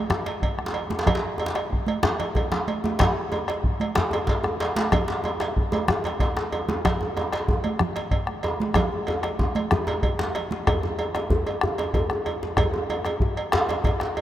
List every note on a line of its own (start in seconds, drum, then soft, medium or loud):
0.10 bombo rim medium
0.10 djembe slap medium
0.10 high conga soft
0.10 djembe tone medium
0.10 low conga medium
0.10 djembe bass medium
0.26 cowbell medium
0.26 djembe slap medium
0.42 bombo low medium
0.42 cowbell soft
0.58 bombo rim medium
0.58 high conga soft
0.66 djembe slap medium
0.74 bombo rim soft
0.74 cowbell medium
0.74 djembe slap soft
0.90 djembe slap medium
0.90 high conga medium
0.90 djembe tone medium
0.99 djembe slap medium
1.06 bombo rim medium
1.06 bombo low medium
1.06 cowbell medium
1.06 djembe slap soft
1.06 djembe tone medium
1.06 low conga medium
1.06 djembe bass medium
1.15 djembe slap medium
1.24 djembe slap soft
1.38 cowbell soft
1.38 djembe slap soft
1.38 djembe tone medium
1.46 djembe slap medium
1.54 bombo rim medium
1.54 cowbell medium
1.54 djembe slap medium
1.54 high conga soft
1.70 bombo rim soft
1.70 bombo low medium
1.70 high conga soft
1.87 bombo rim soft
1.87 cowbell medium
1.87 djembe slap soft
1.87 high conga medium
2.03 bombo rim medium
2.03 djembe slap loud
2.03 djembe slap soft
2.03 djembe tone medium
2.03 low conga medium
2.03 djembe bass medium
2.20 cowbell soft
2.20 djembe slap medium
2.20 low conga soft
2.35 bombo low medium
2.35 cowbell medium
2.35 djembe tone medium
2.35 low conga soft
2.52 bombo rim medium
2.52 djembe slap medium
2.52 low conga medium
2.68 cowbell soft
2.68 djembe slap soft
2.68 high conga medium
2.84 djembe slap medium
2.84 djembe tone medium
2.84 high conga medium
2.99 bombo rim medium
2.99 bombo low medium
2.99 cowbell medium
2.99 djembe slap loud
2.99 djembe tone medium
2.99 low conga medium
2.99 djembe bass medium
3.32 cowbell soft
3.32 djembe tone medium
3.32 high conga soft
3.48 bombo rim medium
3.48 cowbell soft
3.48 djembe slap medium
3.64 bombo low loud
3.80 cowbell soft
3.80 djembe slap soft
3.80 high conga medium
3.95 bombo rim medium
3.95 djembe slap loud
3.95 high conga soft
3.95 djembe tone medium
3.95 low conga medium
3.95 djembe bass medium
4.11 cowbell medium
4.11 djembe slap medium
4.11 djembe tone medium
4.27 bombo low medium
4.27 cowbell soft
4.27 djembe slap medium
4.44 bombo rim medium
4.44 djembe tone medium
4.44 high conga soft
4.60 bombo rim soft
4.60 cowbell medium
4.60 djembe slap medium
4.60 djembe slap soft
4.76 djembe slap loud
4.76 djembe slap medium
4.76 high conga medium
4.92 bombo rim medium
4.92 bombo low loud
4.92 cowbell medium
4.92 djembe tone medium
4.92 low conga medium
4.92 djembe bass medium
5.08 djembe slap medium
5.24 cowbell soft
5.24 djembe tone medium
5.24 high conga soft
5.40 bombo rim medium
5.40 cowbell soft
5.40 djembe slap medium
5.57 bombo low loud
5.72 cowbell soft
5.72 djembe slap soft
5.72 djembe tone loud
5.72 high conga medium
5.88 bombo rim loud
5.88 djembe slap medium
5.88 high conga soft
5.88 djembe tone medium
5.88 low conga medium
5.88 djembe bass medium
6.04 cowbell soft
6.04 djembe slap medium
6.04 djembe tone medium
6.20 bombo low loud
6.20 cowbell medium
6.20 djembe tone loud
6.37 bombo rim medium
6.37 djembe slap medium
6.37 high conga soft
6.52 cowbell soft
6.52 djembe slap soft
6.52 djembe tone medium
6.69 djembe slap medium
6.69 high conga medium
6.69 djembe tone loud
6.85 bombo rim medium
6.85 bombo low medium
6.85 cowbell medium
6.85 djembe slap medium
6.85 djembe tone medium
6.85 djembe bass medium
6.85 low conga medium
7.01 djembe tone medium
7.17 cowbell soft
7.17 high conga soft
7.17 djembe tone loud
7.32 bombo rim medium
7.32 cowbell soft
7.32 djembe slap medium
7.48 bombo low loud
7.48 djembe tone medium
7.64 cowbell soft
7.64 djembe slap soft
7.64 high conga medium
7.79 bombo rim loud
7.79 high conga soft
7.79 djembe tone medium
7.79 low conga medium
7.79 djembe bass medium
7.96 cowbell soft
7.96 djembe slap medium
8.11 bombo low medium
8.11 cowbell soft
8.27 bombo rim medium
8.27 high conga soft
8.43 bombo rim soft
8.43 cowbell soft
8.43 djembe slap soft
8.43 djembe tone loud
8.60 djembe slap medium
8.60 high conga medium
8.74 bombo rim medium
8.74 bombo low medium
8.74 cowbell medium
8.74 djembe tone loud
8.74 djembe tone medium
8.74 low conga medium
8.74 djembe bass medium
8.92 djembe slap soft
9.07 cowbell soft
9.07 djembe tone loud
9.23 bombo rim medium
9.23 cowbell medium
9.23 djembe slap medium
9.39 bombo low loud
9.39 djembe slap soft
9.39 djembe tone loud
9.55 cowbell medium
9.55 djembe slap soft
9.55 high conga medium
9.71 bombo rim loud
9.71 djembe slap soft
9.71 djembe tone loud
9.71 high conga soft
9.71 djembe tone medium
9.71 low conga medium
9.71 djembe bass medium
9.87 cowbell medium
9.87 djembe tone loud
9.87 djembe bass soft
10.03 bombo rim soft
10.03 bombo low medium
10.03 cowbell medium
10.03 djembe bass soft
10.19 bombo rim medium
10.19 djembe slap medium
10.19 high conga soft
10.19 djembe bass medium
10.35 cowbell medium
10.35 djembe slap medium
10.51 djembe slap medium
10.51 high conga medium
10.67 bombo rim medium
10.67 bombo low medium
10.67 cowbell medium
10.67 djembe tone medium
10.67 djembe bass loud
10.67 djembe bass medium
10.83 bombo rim soft
10.83 djembe tone medium
10.99 cowbell soft
10.99 djembe tone medium
11.15 bombo rim medium
11.15 cowbell soft
11.15 djembe slap medium
11.15 djembe tone medium
11.30 bombo low medium
11.30 djembe tone medium
11.30 djembe bass loud
11.47 bombo rim soft
11.47 cowbell soft
11.47 djembe tone medium
11.61 bombo rim medium
11.61 djembe tone medium
11.61 djembe bass medium
11.78 cowbell soft
11.78 djembe slap medium
11.78 djembe tone medium
11.94 bombo low medium
11.94 cowbell soft
11.94 djembe tone medium
11.94 djembe bass medium
12.10 bombo rim medium
12.10 djembe tone medium
12.25 bombo rim soft
12.25 cowbell soft
12.25 djembe tone medium
12.43 djembe slap medium
12.43 djembe tone medium
12.57 bombo rim medium
12.57 bombo low loud
12.57 cowbell medium
12.57 djembe tone medium
12.57 djembe bass loud
12.57 djembe bass medium
12.73 bombo rim soft
12.73 djembe tone medium
12.90 cowbell medium
12.90 djembe tone medium
13.05 bombo rim medium
13.05 cowbell soft
13.05 djembe slap medium
13.05 djembe tone medium
13.20 bombo low loud
13.20 djembe tone medium
13.37 bombo rim soft
13.37 cowbell soft
13.52 bombo rim loud
13.52 djembe slap loud
13.52 djembe bass medium
13.69 cowbell medium
13.69 djembe slap medium
13.69 djembe tone medium
13.84 bombo rim soft
13.84 bombo low medium
13.84 cowbell medium
13.84 djembe tone medium
13.87 djembe tone medium
14.00 bombo rim medium
14.00 djembe slap medium
14.16 bombo rim soft
14.16 cowbell medium
14.16 djembe tone medium